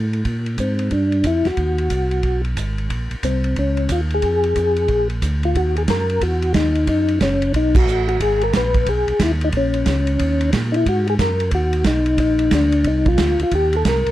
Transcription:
Already playing: A2
0.13 ride
0.25 A#2, kick, ride
0.46 ride
0.58 G#2 C4, kick, hi-hat pedal, ride
0.79 ride
0.91 G2 D4, kick, ride
1.12 ride
1.24 F2 E4, kick, hi-hat pedal, ride
1.45 F2 F#4, snare, ride
1.57 D#2, kick, ride
1.78 ride
1.90 C2, kick, hi-hat pedal, ride
2.11 ride
2.23 B1, kick, ride
2.45 ride
2.56 G#1, kick, hi-hat pedal, ride
2.78 ride
2.89 A#1, kick, ride
3.10 A#1, ride
3.23 C2 C4, kick, hi-hat pedal, ride
3.44 ride
3.56 C#2 C#4, kick, ride
3.77 ride
3.89 D#2 F4, kick, hi-hat pedal, ride
4.10 G#4, ride
4.22 F2, kick, ride
4.44 ride
4.56 F2, kick, hi-hat pedal, ride
4.76 ride
4.88 A#1, kick, ride
5.10 ride
5.22 D2, kick, hi-hat pedal, ride
5.43 F4, ride
5.55 D#2 F#4, kick, ride
5.76 G#4, ride
5.88 F#2 A#4, kick, snare, hi-hat pedal, ride
6.10 ride
6.21 E2 F#4, kick, ride
6.42 ride
6.54 D#2 D#4, kick, snare, hi-hat pedal, ride
6.75 ride
6.87 F#2 D#4, kick, ride
7.08 ride
7.20 F#1 C#4, kick, snare, hi-hat pedal, ride
7.42 ride
7.53 B1 D#4, kick, ride
7.75 F#4, kick, crash
7.86 A1, hi-hat pedal
8.09 F#4, ride
8.20 G#1 G#4, kick, ride
8.41 A#4, ride
8.53 A#1 B4, kick, snare, hi-hat pedal, ride
8.74 kick, ride
8.86 B1 G#4, kick, ride
9.07 B1, ride
9.19 D#2 E4, kick, snare, hi-hat pedal, ride
9.41 D#4, ride
9.52 A#1, kick, ride
9.57 C#4
9.74 ride
9.85 C#2, kick, snare, hi-hat pedal, ride
10.07 ride
10.19 D#2, kick, ride
10.41 ride
10.52 A#2, kick, snare, hi-hat pedal, ride
10.72 D#4, ride
10.76 E4
10.85 G#2 F#4, kick, ride
11.07 G#4, ride
11.19 F#2 A#4, kick, snare, hi-hat pedal, ride
11.40 ride
11.51 D#2 F#4, kick, ride
11.73 ride
11.84 B1 D#4, kick, snare, hi-hat pedal, ride
12.06 ride
12.17 A#1 D#4, kick, ride
12.39 ride
12.51 D2 D4, kick, snare, hi-hat pedal, ride
12.72 ride
12.84 C2 D#4, kick, ride
13.06 F4, kick, ride
13.18 D2, kick, snare, hi-hat pedal, ride
13.38 D2, ride
13.43 F4
13.51 D#2 G4, kick, ride
13.73 A4, ride
13.85 C2 A#4, kick, snare, hi-hat pedal, ride
14.05 C2, ride

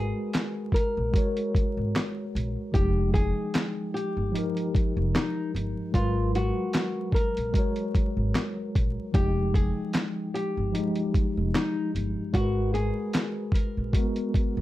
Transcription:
Already playing: G#3 F#4 G#4 A#4 B4
0.33 snare, clap, closed hi-hat
0.72 A#4, kick, closed hi-hat
0.97 A#1
1.11 G#3 F#4, kick
1.16 A#4 C#5, closed hi-hat
1.37 closed hi-hat
1.55 kick, closed hi-hat
1.77 G#1
1.96 snare, clap, closed hi-hat
2.35 A#1, closed hi-hat
2.72 F1 F3 D#4 G4, kick, closed hi-hat
2.76 G#3 G5
3.14 G#4, kick, closed hi-hat
3.54 snare, clap, closed hi-hat
3.94 G4, closed hi-hat
4.17 G1
4.32 F3 D#4, closed hi-hat
4.37 G4 A#4
4.57 closed hi-hat
4.75 kick, closed hi-hat
4.97 F1
5.15 D#4, snare, clap, closed hi-hat
5.55 G1, closed hi-hat
5.92 G#1 F#3 G#3 F4 A#4, kick, closed hi-hat
5.98 B4
6.35 F#4, closed hi-hat
6.73 snare, clap, closed hi-hat
7.12 A#4, kick, closed hi-hat
7.37 A#1, closed hi-hat
7.53 G#3 F#4, kick, closed hi-hat
7.57 A#4 C#5
7.76 closed hi-hat
7.95 kick, closed hi-hat
8.17 G#1
8.35 snare, clap, closed hi-hat
8.75 A#1, kick, closed hi-hat
9.12 F1 F3 D#4 G4, kick, closed hi-hat
9.16 G#3 G5
9.54 G#4, kick, closed hi-hat
9.93 snare, clap, closed hi-hat
10.34 G4, closed hi-hat
10.57 G1
10.72 F3 D#4, closed hi-hat
10.76 G#3 G4
10.95 closed hi-hat
11.14 kick, closed hi-hat
11.37 F1
11.54 D#4, snare, clap, closed hi-hat
11.95 G1, closed hi-hat
12.33 G#1 G#3 F#4, kick, closed hi-hat
12.37 A#4 B4
12.74 G#4, closed hi-hat
13.13 snare, clap, closed hi-hat
13.52 A#4, kick, closed hi-hat
13.77 A#1
13.93 G#3 F#4, kick, closed hi-hat
13.97 B3 A#4
14.16 closed hi-hat
14.34 kick, closed hi-hat
14.57 G#1

